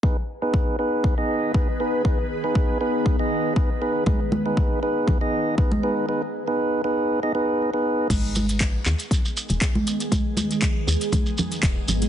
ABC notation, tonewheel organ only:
X:1
M:4/4
L:1/16
Q:"Swing 16ths" 1/4=119
K:Abdor
V:1 name="Tonewheel organ"
[CEAc] z2 [CEAc]3 [CEAc]3 [CEAe]3 [CEAc] z [CEAc]2 | [CEAc] z2 [CEAc]3 [CEAc]3 [CEAe]3 [CEAc] z [CEAc]2 | [CEAc] z2 [CEAc]3 [CEAc]3 [CEAe]3 [CEAc] z [CEAc]2 | [CEAc] z2 [CEAc]3 [CEAc]3 [CEAe] [CEAc]3 [CEAc]3 |
z16 | z16 |]